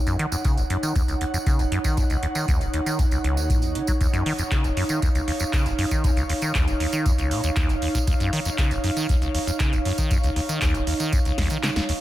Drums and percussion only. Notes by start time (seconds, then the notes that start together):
0.07 closed hi-hat, tambourine
0.19 closed hi-hat
0.32 closed hi-hat, tambourine
0.44 kick, closed hi-hat, tambourine
0.57 closed hi-hat, tambourine
0.70 closed hi-hat
0.83 closed hi-hat, tambourine
0.96 kick, closed hi-hat, tambourine
1.08 closed hi-hat, tambourine
1.21 closed hi-hat
1.34 closed hi-hat, tambourine
1.46 kick, closed hi-hat, tambourine
1.59 closed hi-hat, tambourine
1.72 closed hi-hat
1.84 kick, closed hi-hat, tambourine
1.97 kick, closed hi-hat, tambourine
2.10 closed hi-hat, tambourine
2.23 closed hi-hat
2.35 closed hi-hat, tambourine
2.48 kick, closed hi-hat, tambourine
2.61 closed hi-hat, tambourine
2.74 closed hi-hat
2.86 closed hi-hat, tambourine
2.99 kick, closed hi-hat, tambourine
3.11 closed hi-hat, tambourine
3.24 closed hi-hat
3.37 closed hi-hat, tambourine
3.50 kick, closed hi-hat, tambourine
3.62 closed hi-hat, tambourine
3.75 closed hi-hat
3.87 kick, closed hi-hat, tambourine
4.01 kick, closed hi-hat, tambourine
4.13 closed hi-hat, tambourine
4.26 open hi-hat
4.38 closed hi-hat, tambourine
4.51 kick, clap, closed hi-hat, tambourine
4.64 closed hi-hat, tambourine
4.77 open hi-hat
4.89 closed hi-hat, tambourine
5.02 kick, closed hi-hat, tambourine
5.15 closed hi-hat, tambourine
5.28 open hi-hat
5.40 closed hi-hat, tambourine
5.53 kick, clap, closed hi-hat, tambourine
5.66 closed hi-hat, tambourine
5.79 open hi-hat
5.91 kick, closed hi-hat, tambourine
6.04 kick, closed hi-hat, tambourine
6.17 closed hi-hat, tambourine
6.29 open hi-hat
6.42 tambourine
6.55 kick, clap, closed hi-hat, tambourine
6.68 closed hi-hat, tambourine
6.80 open hi-hat
6.92 closed hi-hat, tambourine
7.06 kick, closed hi-hat, tambourine
7.18 closed hi-hat, tambourine
7.31 open hi-hat
7.44 closed hi-hat, tambourine
7.56 kick, clap, closed hi-hat, tambourine
7.69 closed hi-hat, tambourine
7.82 open hi-hat
7.95 kick, closed hi-hat, tambourine
8.07 kick, closed hi-hat, tambourine
8.20 closed hi-hat, tambourine
8.33 open hi-hat
8.45 closed hi-hat, tambourine
8.58 kick, clap, closed hi-hat, tambourine
8.71 closed hi-hat, tambourine
8.84 open hi-hat
8.96 closed hi-hat, tambourine
9.09 kick, closed hi-hat, tambourine
9.22 closed hi-hat, tambourine
9.35 open hi-hat
9.47 closed hi-hat, tambourine
9.60 kick, clap, closed hi-hat, tambourine
9.73 closed hi-hat, tambourine
9.85 open hi-hat
9.98 kick, closed hi-hat, tambourine
10.11 kick, closed hi-hat, tambourine
10.23 closed hi-hat, tambourine
10.36 open hi-hat
10.49 closed hi-hat, tambourine
10.61 kick, clap, closed hi-hat, tambourine
10.74 closed hi-hat, tambourine
10.87 open hi-hat
11.00 closed hi-hat, tambourine
11.13 kick, closed hi-hat, tambourine
11.25 closed hi-hat, tambourine
11.38 kick, snare, open hi-hat
11.50 closed hi-hat, tambourine
11.63 snare, clap, closed hi-hat, tambourine
11.76 snare, closed hi-hat, tambourine
11.89 open hi-hat